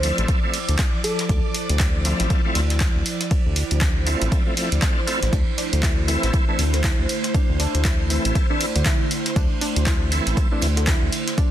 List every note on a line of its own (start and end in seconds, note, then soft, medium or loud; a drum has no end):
0.00 0.12 D2 loud
0.00 5.29 F3 medium
0.00 0.40 F3 medium
0.00 0.40 A3 medium
0.00 0.40 C4 medium
0.00 11.51 E4 medium
0.00 0.40 E4 medium
0.00 0.28 C5 medium
0.00 11.51 C5 medium
0.00 5.34 D5 medium
0.00 5.34 D6 medium
0.00 open hi-hat loud
0.00 ride medium
0.18 0.26 A1 loud
0.18 closed hi-hat medium
0.28 kick loud
0.28 closed hi-hat medium
0.28 ride medium
0.43 0.59 F3 medium
0.43 0.59 A3 medium
0.43 0.59 C4 medium
0.43 0.59 E4 medium
0.54 open hi-hat loud
0.54 ride medium
0.69 0.76 D2 medium
0.69 closed hi-hat medium
0.69 ride soft
0.79 kick loud
0.79 snare loud
0.79 clap loud
0.79 closed hi-hat soft
0.79 ride medium
1.04 1.76 A4 medium
1.04 open hi-hat medium
1.04 ride medium
1.19 snare soft
1.19 closed hi-hat medium
1.29 1.40 D2 loud
1.29 kick loud
1.29 closed hi-hat soft
1.29 ride medium
1.54 open hi-hat loud
1.54 ride medium
1.69 2.14 D2 loud
1.69 closed hi-hat medium
1.79 kick loud
1.79 snare loud
1.79 clap loud
1.79 closed hi-hat soft
1.79 ride medium
2.04 2.41 F3 medium
2.04 2.41 A3 medium
2.04 2.42 C4 medium
2.04 2.42 E4 medium
2.04 open hi-hat medium
2.04 ride medium
2.20 2.27 A1 loud
2.20 snare soft
2.20 closed hi-hat medium
2.30 kick loud
2.30 closed hi-hat medium
2.30 ride medium
2.45 2.61 F3 medium
2.45 2.61 A3 medium
2.45 2.61 C4 medium
2.45 2.61 E4 medium
2.55 2.89 D2 medium
2.55 snare soft
2.55 open hi-hat loud
2.55 ride medium
2.70 snare soft
2.70 closed hi-hat medium
2.80 kick loud
2.80 snare loud
2.80 clap loud
2.80 closed hi-hat soft
2.80 ride medium
2.96 3.03 D2 medium
3.06 open hi-hat medium
3.06 ride medium
3.21 snare soft
3.21 closed hi-hat medium
3.31 kick loud
3.31 closed hi-hat soft
3.31 ride medium
3.46 3.63 D2 medium
3.56 open hi-hat loud
3.56 ride medium
3.71 4.15 D2 loud
3.71 closed hi-hat medium
3.81 kick loud
3.81 snare loud
3.81 clap loud
3.81 closed hi-hat soft
3.81 ride medium
4.06 4.43 F3 medium
4.06 4.43 A3 medium
4.06 4.43 C4 medium
4.06 4.44 E4 medium
4.06 open hi-hat medium
4.06 ride medium
4.21 4.29 A1 loud
4.21 closed hi-hat medium
4.32 kick loud
4.32 closed hi-hat medium
4.32 ride medium
4.46 4.55 F3 medium
4.46 4.55 A3 medium
4.46 4.55 C4 medium
4.46 4.55 E4 medium
4.56 4.69 F3 medium
4.56 4.70 A3 medium
4.56 4.70 C4 medium
4.56 4.70 E4 medium
4.56 open hi-hat loud
4.56 ride medium
4.72 4.80 D2 medium
4.72 closed hi-hat medium
4.72 ride soft
4.82 5.01 F3 medium
4.82 5.01 A3 medium
4.82 5.01 C4 medium
4.82 5.01 D4 medium
4.82 kick loud
4.82 snare loud
4.82 clap loud
4.82 closed hi-hat soft
4.82 ride medium
5.07 5.20 F3 loud
5.07 5.20 A3 medium
5.07 5.20 C4 medium
5.07 5.21 E4 loud
5.07 open hi-hat medium
5.07 ride medium
5.22 5.30 A1 medium
5.22 snare medium
5.22 closed hi-hat medium
5.33 5.44 D2 loud
5.33 11.51 A3 medium
5.33 5.42 D4 medium
5.33 11.51 C5 medium
5.33 11.51 C6 medium
5.33 kick loud
5.33 closed hi-hat soft
5.33 ride medium
5.58 5.64 D4 medium
5.58 open hi-hat loud
5.58 ride medium
5.73 6.17 D2 loud
5.73 closed hi-hat medium
5.83 5.90 E4 medium
5.83 kick loud
5.83 snare loud
5.83 clap loud
5.83 closed hi-hat medium
5.83 ride medium
6.08 6.45 E3 medium
6.08 6.45 A3 medium
6.08 6.45 C4 medium
6.08 6.45 E4 medium
6.08 open hi-hat medium
6.08 ride medium
6.23 6.31 A1 loud
6.23 snare soft
6.23 closed hi-hat medium
6.33 kick loud
6.33 closed hi-hat soft
6.33 ride medium
6.48 6.64 E3 medium
6.48 6.64 A3 medium
6.48 6.64 C4 medium
6.48 6.53 D4 medium
6.48 6.64 E4 medium
6.58 6.93 D2 medium
6.58 snare soft
6.58 open hi-hat loud
6.58 ride medium
6.73 6.78 D3 medium
6.73 snare soft
6.73 closed hi-hat medium
6.84 6.90 E4 medium
6.84 kick loud
6.84 snare loud
6.84 clap loud
6.84 closed hi-hat soft
6.84 ride medium
6.99 7.06 D2 medium
7.09 open hi-hat medium
7.09 ride medium
7.24 snare medium
7.24 closed hi-hat medium
7.34 7.44 D4 medium
7.34 kick loud
7.34 closed hi-hat medium
7.34 ride medium
7.49 7.67 D2 medium
7.60 7.66 D4 medium
7.60 open hi-hat loud
7.60 ride medium
7.75 8.19 D2 loud
7.75 closed hi-hat medium
7.85 7.91 E4 medium
7.85 kick loud
7.85 snare loud
7.85 clap loud
7.85 closed hi-hat soft
7.85 ride medium
8.09 8.46 E3 medium
8.09 8.46 A3 medium
8.09 8.47 C4 medium
8.09 8.47 E4 medium
8.09 open hi-hat medium
8.09 ride medium
8.25 8.33 A1 loud
8.25 closed hi-hat medium
8.35 kick loud
8.35 closed hi-hat medium
8.35 ride medium
8.50 8.66 E3 medium
8.50 8.66 A3 medium
8.50 8.66 C4 medium
8.50 8.55 D4 medium
8.50 8.66 E4 medium
8.60 open hi-hat loud
8.60 ride medium
8.75 8.83 D2 medium
8.75 8.80 D3 medium
8.75 closed hi-hat medium
8.75 ride soft
8.86 8.92 E4 medium
8.86 kick loud
8.86 snare loud
8.86 clap loud
8.86 closed hi-hat medium
8.86 ride medium
9.11 open hi-hat medium
9.11 ride medium
9.26 snare soft
9.26 closed hi-hat medium
9.36 9.47 D2 loud
9.36 9.46 D4 medium
9.36 kick loud
9.36 closed hi-hat medium
9.36 ride medium
9.61 9.68 D4 medium
9.61 open hi-hat loud
9.61 ride medium
9.76 10.20 D2 loud
9.76 closed hi-hat medium
9.86 9.93 E4 medium
9.86 kick loud
9.86 snare loud
9.86 clap loud
9.86 closed hi-hat medium
9.86 ride medium
10.11 10.48 E3 medium
10.11 10.48 A3 medium
10.11 10.48 C4 medium
10.11 10.49 E4 medium
10.11 open hi-hat medium
10.11 ride medium
10.26 10.34 A1 loud
10.26 snare soft
10.26 closed hi-hat medium
10.37 kick loud
10.37 closed hi-hat medium
10.37 ride medium
10.51 10.67 E3 medium
10.51 10.67 A3 medium
10.51 10.68 C4 medium
10.51 10.56 D4 medium
10.51 10.68 E4 medium
10.61 10.96 D2 medium
10.61 snare soft
10.61 open hi-hat loud
10.61 ride medium
10.77 10.82 D3 medium
10.77 snare soft
10.77 closed hi-hat medium
10.87 10.94 E4 medium
10.87 kick loud
10.87 snare loud
10.87 clap loud
10.87 closed hi-hat medium
10.87 ride medium
11.02 11.10 D2 medium
11.12 open hi-hat medium
11.12 ride medium
11.28 snare soft
11.28 closed hi-hat medium
11.38 11.47 D4 medium
11.38 kick loud
11.38 closed hi-hat medium
11.38 ride medium